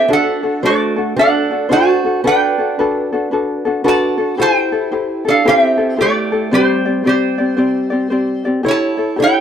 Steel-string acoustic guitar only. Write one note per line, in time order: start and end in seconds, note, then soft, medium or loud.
0.08 0.59 D4 medium
0.63 1.13 A3 medium
1.16 1.67 D4 medium
1.72 2.21 F#4 medium
2.24 3.81 D4 medium
3.84 4.34 F#4 medium
4.40 5.22 E4 medium
5.28 5.45 D4 medium
5.48 5.96 C4 medium
6.01 6.49 A3 medium
6.53 7.02 G3 medium
7.07 8.43 G3 medium
8.66 9.15 E4 medium
9.20 9.40 E4 medium